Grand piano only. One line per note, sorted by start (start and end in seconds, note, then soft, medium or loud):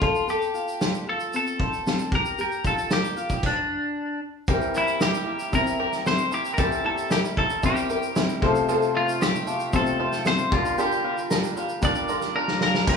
4.48 5.45 G3 medium
4.48 5.45 C4 medium
4.48 5.46 E4 medium
4.48 5.46 A#4 loud
5.52 6.49 G3 medium
5.52 6.50 C4 medium
5.52 6.50 E4 medium
5.52 6.50 A#4 medium
6.58 7.55 G3 medium
6.58 7.55 C4 medium
6.58 7.55 E4 medium
6.58 7.55 C5 medium
7.63 8.42 G3 medium
7.63 8.41 C4 medium
7.63 8.43 E4 medium
7.63 8.43 A#4 medium
8.42 9.38 C3 medium
8.42 9.38 A3 medium
8.42 9.39 C4 medium
8.42 9.39 F4 medium
8.42 9.39 C5 loud
9.73 10.52 C3 medium
9.73 9.80 G3 soft
9.73 10.52 C4 medium
9.73 10.51 F4 medium
9.73 10.53 C5 medium
9.80 10.55 A3 medium
10.51 11.48 G3 medium
10.51 11.48 D4 medium
10.51 11.49 F4 medium
10.51 11.49 A#4 medium
11.82 12.79 G3 medium
11.82 12.79 D4 medium
11.82 12.79 F4 medium
11.82 12.79 A#4 medium
12.87 12.97 G3 medium
12.87 12.97 A#3 medium
12.87 12.97 C4 medium
12.87 12.97 E4 medium
12.87 12.97 C5 medium